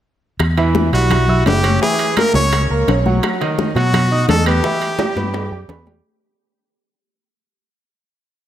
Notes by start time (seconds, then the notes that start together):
0.39 E2, high bongo, high conga, high timbale, claves
0.57 E3 E4 E5, high bongo, high conga, high timbale
0.75 high bongo, high conga
0.93 B1 G3 E4 F#4 E5, high bongo, high conga, high timbale
1.10 high bongo, high conga, low conga, high timbale, claves
1.28 E4 E5 E6, high conga, low conga
1.46 F#1 G4, high bongo, low bongo, high conga, high timbale, low timbale
1.63 C#4 C#5 C#6, high bongo, high conga, high timbale, claves
1.81 E3 E4 G#4 E5, high bongo, high conga
1.99 high bongo, high conga, high timbale
2.17 A#3 A#4 A#5, high bongo, high conga, high timbale, claves
2.34 C#2 C#4 C#5 C#6, high bongo, high conga
2.53 high bongo, high conga, high timbale, claves
2.70 C#2 A#3 A#4 A#5, high conga
2.88 B1 C#4 C#5 C#6, high bongo, low bongo, high timbale
3.06 F#3 F#4 F#5, high bongo, high conga
3.23 high bongo, high conga, high timbale, claves
3.41 D#3 D#4 D#5, high bongo, high conga, high timbale
3.59 high bongo, high conga
3.75 B2 F#3 F#4 F#5, high bongo, high conga, high timbale
3.94 high bongo, high conga, low conga, high timbale, claves
4.12 D#4 D#5 D#6
4.29 E2 A4, high bongo, low bongo, high conga, high timbale, low timbale
4.46 B3 G4 B4 B5, high bongo, high timbale, claves
4.64 E3 E4 E5, high bongo, high conga
4.82 high bongo, high conga, high timbale
4.99 G3 G4 G5, high bongo, high conga, high timbale, claves
5.16 G2 B3 B4 B5, high bongo, high conga
5.34 high bongo, high conga, low timbale, claves
5.51 F#2 G3 G4 G5, high conga
5.69 E2 B3 B4 B5, high bongo, low bongo, low timbale
5.86 G3 G4 G5, high bongo, high conga, low timbale